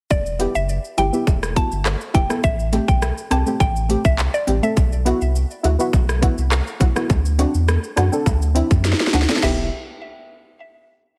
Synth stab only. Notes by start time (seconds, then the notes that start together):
0.39 B3 E4 G4
0.97 E4 G4
1.13 B3 E4 G4
1.56 B3 E4 F#4
2.14 E4 G4
2.29 B3 E4 A4
2.72 A3 C4 G4
3.31 C4 G4
3.46 A3 C4 G4
3.89 A3 C4 G4
4.47 C4 G4
4.62 A3 C4 A4
5.05 B3 E4 F#4
5.63 E4 F#4
5.79 B3 E4 F#4
6.21 B3 E4 F#4
6.80 E4 F#4
6.95 B3 E4 F#4
7.38 C4 D4 F#4
7.96 D4 F#4
8.12 C4 D4 A4
8.55 C4 D4 E4
9.13 D4 F#4
9.28 C4 D4 A4
9.43 B3 E4 G4